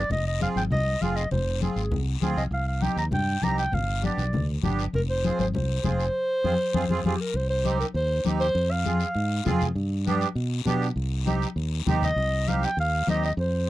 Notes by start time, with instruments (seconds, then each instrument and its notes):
Already playing: clarinet D5
0.10 fingered electric bass F1, clarinet D#5, low conga, long guiro
0.27 clarinet D#5
0.40 accordion C4 F4 G#4, clarinet F5, high conga, short guiro
0.56 fingered electric bass G#1, clarinet G5, high conga, short guiro
0.70 fingered electric bass C2, clarinet D#5, low conga, long guiro
1.01 fingered electric bass F1, accordion C4 F4 G#4, clarinet F5, high conga, short guiro
1.16 clarinet D#5, short guiro
1.31 fingered electric bass F1, clarinet C5, low conga, long guiro
1.61 accordion C4 F4 G#4, clarinet G#4, high conga, short guiro
1.76 fingered electric bass G#1, short guiro
1.91 fingered electric bass C2, low conga, long guiro
2.21 fingered electric bass D2, accordion C4 F4 G#4, high conga, short guiro
2.36 fingered electric bass C2, clarinet D#5, short guiro
2.51 fingered electric bass C2, clarinet F5, long guiro
2.67 clarinet F5
2.81 accordion C4 D#4 G4, clarinet G5, high conga, short guiro
2.96 fingered electric bass D#2, clarinet A#5, short guiro
3.11 fingered electric bass G2, clarinet G5, low conga, long guiro
3.42 fingered electric bass C2, accordion C4 D#4 G4, clarinet A#5, high conga, short guiro
3.58 clarinet G5, short guiro
3.72 fingered electric bass G1, clarinet F5, low conga, long guiro
4.02 accordion B3 D4 G4, clarinet D5, high conga, short guiro
4.18 fingered electric bass B1, high conga, short guiro
4.33 fingered electric bass D2, low conga, long guiro
4.63 fingered electric bass G1, accordion B3 D4 G4, high conga, low conga, short guiro
4.79 short guiro
4.93 fingered electric bass F1, clarinet A#4, low conga, long guiro
5.09 clarinet C5
5.24 accordion C4 F4 G#4, high conga, short guiro
5.39 fingered electric bass G#1, clarinet C5, high conga, short guiro
5.53 fingered electric bass C2, clarinet C5, low conga, long guiro
5.83 fingered electric bass F1, accordion C4 F4 G#4, high conga, low conga, short guiro
6.00 short guiro
6.44 fingered electric bass F2, accordion C4 F4 G#4, high conga, long guiro
6.74 fingered electric bass F2, accordion C4 F4 G#4, high conga, long guiro
6.89 fingered electric bass F2, accordion C4 F4 G#4, high conga, long guiro
7.04 fingered electric bass F2, accordion C4 F4 G#4, clarinet G4, high conga, long guiro
7.20 clarinet A#4
7.34 fingered electric bass C2, clarinet C5, high conga, long guiro
7.50 clarinet C5
7.64 accordion C4 D#4 G4, high conga, short guiro
7.80 clarinet A#4, short guiro
7.94 fingered electric bass D#2, clarinet C5, high conga, long guiro
8.24 fingered electric bass D#2, accordion C4 D#4 G4, high conga, short guiro
8.40 clarinet C5, short guiro
8.55 fingered electric bass F2, high conga, long guiro
8.71 clarinet F5
8.85 accordion C4 F4 G#4, high conga, short guiro
9.00 short guiro
9.15 fingered electric bass G#2, high conga, long guiro
9.45 fingered electric bass F2, accordion C4 F4 G#4, high conga, low conga, short guiro
9.61 low conga, short guiro
9.75 fingered electric bass G2, high conga, long guiro
10.06 accordion B3 D4 G4, high conga, short guiro
10.21 short guiro
10.35 fingered electric bass B2, high conga, long guiro
10.65 fingered electric bass B2, accordion B3 D4 G4, high conga, short guiro
10.82 short guiro
10.96 fingered electric bass C2, high conga, long guiro
11.26 accordion C4 D#4 G4, high conga, short guiro
11.42 short guiro
11.56 fingered electric bass D#2, high conga, long guiro
11.86 fingered electric bass D#2, accordion C4 D#4 G4, high conga, low conga, short guiro
12.02 clarinet D#5, low conga, short guiro
12.16 fingered electric bass C2, high conga, long guiro
12.47 accordion C4 D#4 G4, clarinet F5, high conga, short guiro
12.63 clarinet G5, short guiro
12.77 fingered electric bass D#2, clarinet F5, high conga, long guiro
13.07 fingered electric bass D#2, accordion C4 D#4 G4, clarinet D#5, high conga, short guiro
13.24 clarinet D#5, short guiro
13.37 fingered electric bass F2, clarinet C5, high conga, long guiro